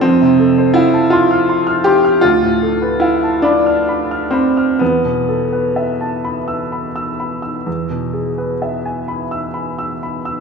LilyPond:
\new Staff \with { instrumentName = "Upright piano" } { \time 12/8 \key e \phrygian \tempo 4. = 44 << { f,16 c16 a'16 c''16 f''16 a''16 c'''16 f'''16 c'''16 f'''16 c'''16 f'''16 d,16 a,16 a'16 b'16 f''16 a''16 b''16 f'''16 b''16 f'''16 b''16 f'''16 | e,16 b,16 a'16 b'16 e''16 a''16 b''16 e'''16 b''16 e'''16 b''16 e'''16 e,16 b,16 gis'16 b'16 e''16 gis''16 b''16 e'''16 b''16 e'''16 b''16 e'''16 | } \\ { c'4 e'8 f'4 g'8 f'4 e'8 d'4 c'8 | b1~ b4. r8 | } >> }